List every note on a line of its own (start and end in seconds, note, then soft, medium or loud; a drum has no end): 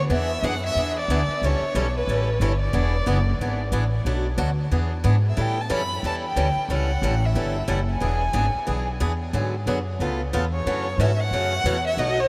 0.10 0.42 E2 medium
0.10 0.30 E3 medium
0.10 0.30 B3 medium
0.10 0.30 D4 medium
0.10 0.30 G#4 medium
0.10 0.46 E5 medium
0.42 0.75 F#2 medium
0.42 0.54 E3 medium
0.42 0.54 B3 medium
0.42 0.54 D4 medium
0.42 0.54 G#4 medium
0.42 0.63 F#5 loud
0.66 0.95 E5 loud
0.75 1.07 E2 medium
0.75 0.96 E3 medium
0.75 0.97 B3 medium
0.75 0.97 D4 medium
0.75 0.97 G#4 medium
1.00 1.47 D5 medium
1.08 1.27 D2 medium
1.08 1.20 E3 medium
1.08 1.20 B3 medium
1.08 1.20 D4 medium
1.08 1.20 G#4 loud
1.28 muted upright bass stroke soft
1.42 1.60 C#2 medium
1.42 1.62 E3 medium
1.42 1.63 G3 medium
1.42 1.63 C#4 medium
1.42 1.63 E4 medium
1.42 1.63 A4 medium
1.46 1.96 C#5 medium
1.61 muted upright bass stroke soft
1.75 2.07 B1 medium
1.75 1.86 E3 medium
1.75 1.86 G3 medium
1.75 1.86 C#4 medium
1.75 1.86 E4 medium
1.75 1.86 A4 medium
1.97 2.43 B4 medium
2.07 2.40 A1 medium
2.07 2.28 E3 medium
2.07 2.28 G3 medium
2.07 2.29 C#4 medium
2.07 2.28 E4 medium
2.07 2.28 A4 medium
2.40 2.72 G1 medium
2.40 2.51 E3 medium
2.40 2.52 G3 medium
2.40 2.52 C#4 medium
2.40 2.52 E4 medium
2.40 2.52 A4 medium
2.40 2.60 C#5 medium
2.60 3.55 D5 medium
2.73 3.05 E1 medium
2.73 2.93 E3 medium
2.73 2.93 B3 medium
2.73 2.94 D4 medium
2.73 2.94 G#4 medium
3.06 3.38 F#1 medium
3.06 3.17 E3 medium
3.06 3.17 B3 medium
3.06 3.17 D4 medium
3.06 3.18 G#4 medium
3.39 3.71 G#1 medium
3.39 3.60 E3 medium
3.39 3.60 B3 medium
3.39 3.60 D4 medium
3.39 3.61 G#4 medium
3.72 4.04 A1 medium
3.72 3.83 E3 medium
3.72 3.83 B3 loud
3.72 3.83 D4 medium
3.72 3.83 G#4 medium
4.05 4.37 B1 medium
4.05 4.26 B2 medium
4.05 4.26 F#3 medium
4.05 4.26 A3 medium
4.05 4.26 D4 medium
4.05 4.26 F#4 medium
4.38 4.70 D2 medium
4.38 4.49 B2 medium
4.38 4.49 F#3 medium
4.38 4.49 A3 medium
4.38 4.49 D4 medium
4.38 4.49 F#4 medium
4.71 5.03 E2 medium
4.71 4.92 E3 medium
4.71 4.92 B3 medium
4.71 4.92 D4 medium
4.71 4.92 G#4 medium
5.04 5.36 G#2 medium
5.04 5.15 E3 medium
5.04 5.15 B3 medium
5.04 5.15 D4 medium
5.04 5.15 G#4 medium
5.29 5.42 E5 medium
5.37 5.69 A2 medium
5.37 5.57 E3 medium
5.37 5.57 G3 medium
5.37 5.57 C#4 medium
5.37 5.57 E4 medium
5.37 5.58 A4 medium
5.41 5.63 G5 medium
5.61 5.73 A5 medium
5.70 6.02 F#2 medium
5.70 5.81 E3 medium
5.70 5.81 G3 medium
5.70 5.81 C#4 medium
5.70 5.81 E4 medium
5.70 5.81 A4 medium
5.70 6.03 B5 medium
6.03 6.35 E2 medium
6.03 6.24 E3 medium
6.03 6.24 G3 medium
6.03 6.24 C#4 medium
6.03 6.24 E4 medium
6.03 6.25 A4 medium
6.03 6.15 A5 medium
6.27 6.69 G5 medium
6.36 6.55 D2 medium
6.36 6.47 E3 medium
6.36 6.47 G3 medium
6.36 6.48 C#4 medium
6.36 6.48 E4 medium
6.36 6.48 A4 medium
6.56 muted upright bass stroke soft
6.69 7.01 C#2 medium
6.69 6.90 E3 medium
6.69 6.90 G3 medium
6.69 6.90 C#4 medium
6.69 6.90 E4 medium
6.69 6.90 A4 medium
6.73 7.26 F#5 medium
7.02 7.34 A1 loud
7.02 7.13 E3 medium
7.02 7.14 G3 medium
7.02 7.14 C#4 medium
7.02 7.14 E4 medium
7.02 7.14 A4 medium
7.25 7.70 E5 medium
7.35 7.67 G1 medium
7.35 7.55 E3 medium
7.35 7.56 G3 medium
7.35 7.56 C#4 medium
7.35 7.56 E4 medium
7.35 7.56 A4 medium
7.68 8.00 F#1 medium
7.68 7.79 E3 medium
7.68 7.79 G3 loud
7.68 7.79 C#4 medium
7.68 7.79 E4 medium
7.68 7.79 A4 loud
7.68 7.79 F#5 medium
7.91 8.84 G#5 medium
8.00 8.33 E1 medium
8.00 8.21 E3 medium
8.00 8.21 B3 medium
8.00 8.22 D4 medium
8.00 8.22 G#4 medium
8.33 8.52 G#1 medium
8.33 8.45 E3 medium
8.33 8.45 B3 medium
8.33 8.45 D4 medium
8.33 8.45 G#4 medium
8.55 muted upright bass stroke soft
8.67 9.00 B1 medium
8.67 8.87 E3 medium
8.67 8.87 B3 medium
8.67 8.87 D4 medium
8.67 8.88 G#4 medium
9.00 9.33 E2 medium
9.00 9.11 E3 medium
9.00 9.11 B3 medium
9.00 9.11 D4 loud
9.00 9.12 G#4 loud
9.33 9.66 G#2 medium
9.33 9.54 D3 medium
9.33 9.54 F#3 medium
9.33 9.54 B3 medium
9.33 9.54 F#4 medium
9.33 9.54 G#4 medium
9.66 9.98 F#2 medium
9.66 9.78 D3 medium
9.66 9.78 F#3 medium
9.66 9.78 B3 medium
9.66 9.78 F#4 medium
9.66 9.78 G#4 medium
9.99 10.32 C#2 medium
9.99 10.20 C#3 medium
9.99 10.20 A3 medium
9.99 10.20 B3 medium
9.99 10.21 F4 medium
9.99 10.21 A4 medium
10.33 10.65 E2 medium
10.33 10.44 C#3 medium
10.33 10.44 A3 medium
10.33 10.44 B3 medium
10.33 10.44 F4 loud
10.33 10.44 A4 medium
10.54 11.02 C#5 medium
10.66 10.97 F#2 medium
10.66 10.86 C#3 medium
10.66 10.86 E3 medium
10.66 10.86 A3 medium
10.66 10.86 C#4 medium
10.66 10.86 F#4 medium
10.98 11.30 G#2 medium
10.98 11.10 C#3 medium
10.98 11.10 E3 medium
10.98 11.10 A3 medium
10.98 11.10 C#4 medium
10.98 11.11 F#4 medium
10.98 11.21 E5 medium
11.20 11.85 F#5 loud
11.31 11.63 F#2 medium
11.31 11.53 C#3 medium
11.31 11.52 E3 medium
11.31 11.53 A3 medium
11.31 11.53 C#4 medium
11.31 11.53 F#4 medium
11.64 11.96 E2 medium
11.64 11.76 C#3 medium
11.64 11.76 E3 medium
11.64 11.76 A3 medium
11.64 11.76 C#4 loud
11.64 11.76 F#4 medium
11.87 12.00 E5 medium
11.97 12.28 B1 medium
11.97 12.18 B2 medium
11.97 12.18 F#3 medium
11.97 12.18 A3 medium
11.97 12.18 D#4 medium
11.97 12.18 F#4 medium
11.97 12.22 D#5 loud
12.20 12.28 C#5 medium